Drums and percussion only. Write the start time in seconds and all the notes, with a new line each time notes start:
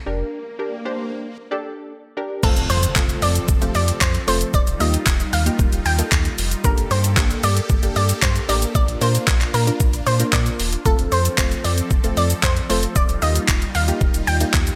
2.43 kick, crash, shaker
2.57 closed hi-hat, shaker
2.70 open hi-hat, shaker
2.83 closed hi-hat, shaker
2.96 kick, clap, shaker
3.09 closed hi-hat, shaker
3.22 open hi-hat, shaker
3.35 closed hi-hat, shaker
3.48 kick, shaker
3.62 closed hi-hat, shaker
3.75 open hi-hat, shaker
3.88 closed hi-hat, shaker
4.01 kick, clap, shaker
4.14 closed hi-hat, shaker
4.28 open hi-hat, shaker
4.41 closed hi-hat, shaker
4.54 kick, shaker
4.67 closed hi-hat, shaker
4.80 open hi-hat, shaker
4.94 closed hi-hat, shaker
5.06 kick, clap, shaker
5.20 closed hi-hat, shaker
5.33 open hi-hat, shaker
5.46 closed hi-hat, shaker
5.59 kick, shaker
5.73 closed hi-hat, shaker
5.86 open hi-hat, shaker
5.99 closed hi-hat, shaker
6.12 kick, clap, shaker
6.25 closed hi-hat, shaker
6.38 open hi-hat, shaker
6.51 closed hi-hat, shaker
6.64 kick, shaker
6.78 closed hi-hat, shaker
6.91 open hi-hat, shaker
7.04 closed hi-hat, shaker
7.17 kick, clap, shaker
7.30 closed hi-hat, shaker
7.43 open hi-hat, shaker
7.57 closed hi-hat, shaker
7.70 kick, shaker
7.83 closed hi-hat, shaker
7.96 open hi-hat, shaker
8.09 closed hi-hat, shaker
8.22 kick, clap, shaker
8.36 closed hi-hat, shaker
8.49 open hi-hat, shaker
8.62 closed hi-hat, shaker
8.75 kick, shaker
8.88 closed hi-hat, shaker
9.02 open hi-hat, shaker
9.15 closed hi-hat, shaker
9.27 kick, clap, shaker
9.41 clap, closed hi-hat, shaker
9.54 open hi-hat, shaker
9.67 closed hi-hat, shaker
9.80 kick, shaker
9.93 closed hi-hat, shaker
10.07 open hi-hat, shaker
10.20 closed hi-hat, shaker
10.33 kick, clap, shaker
10.46 closed hi-hat, shaker
10.60 open hi-hat, shaker
10.73 closed hi-hat, shaker
10.86 kick, shaker
10.99 closed hi-hat, shaker
11.12 open hi-hat, shaker
11.25 closed hi-hat, shaker
11.38 kick, clap, shaker
11.52 closed hi-hat, shaker
11.65 open hi-hat, shaker
11.78 closed hi-hat, shaker
11.91 kick, shaker
12.04 closed hi-hat, shaker
12.17 open hi-hat, shaker
12.30 closed hi-hat, shaker
12.43 kick, clap, shaker
12.57 closed hi-hat, shaker
12.70 open hi-hat, shaker
12.83 closed hi-hat, shaker
12.96 kick, shaker
13.09 closed hi-hat, shaker
13.22 open hi-hat, shaker
13.36 closed hi-hat, shaker
13.48 kick, clap, shaker
13.62 closed hi-hat, shaker
13.75 open hi-hat, shaker
13.88 closed hi-hat, shaker
14.01 kick, shaker
14.14 closed hi-hat, shaker
14.27 open hi-hat, shaker
14.41 closed hi-hat, shaker
14.54 kick, clap, shaker
14.67 closed hi-hat, shaker